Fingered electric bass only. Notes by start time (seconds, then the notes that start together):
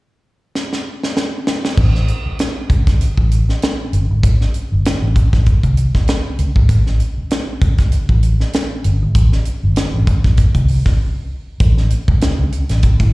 1.78 A1
2.26 muted fingered electric bass stroke
2.70 C#2
3.00 muted fingered electric bass stroke
3.17 A1
3.93 G1
4.10 G#1
4.23 A1
4.72 G1
5.02 A1
5.33 A1
5.63 C2
6.39 C#2
6.56 G#1
6.69 A1
7.18 muted fingered electric bass stroke
7.62 C#2
7.93 muted fingered electric bass stroke
8.09 A1
8.85 G1
9.02 G#1
9.15 A1
9.63 G1
9.94 A1
10.24 A1
10.55 C2
11.60 A1
12.08 C#2
12.39 C#2
12.70 A1
13.00 A2